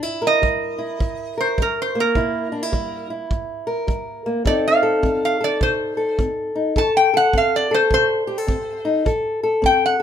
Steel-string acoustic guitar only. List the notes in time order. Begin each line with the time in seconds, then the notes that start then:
Already playing: C3
0.03 E4
0.22 A#4
0.42 G3
0.78 E4
0.99 G2
1.38 A#4
1.58 G3
1.95 A#3
2.16 C3 E4
2.52 D4
2.63 E4
2.72 G3
3.10 E4
3.31 G2
3.67 A#4
3.87 G3
4.26 A#3
4.45 F3 C4 D#4 A4
4.83 A4
5.03 C4
5.41 A4
5.61 C3
5.97 A4
6.19 C4
6.55 D#4
6.76 F3 A4
7.14 A4
7.34 C4
7.71 A4
7.92 C3
8.27 G4
8.38 A4
8.47 C4
8.85 D#4
9.05 F3 A4
9.43 A4
9.62 C4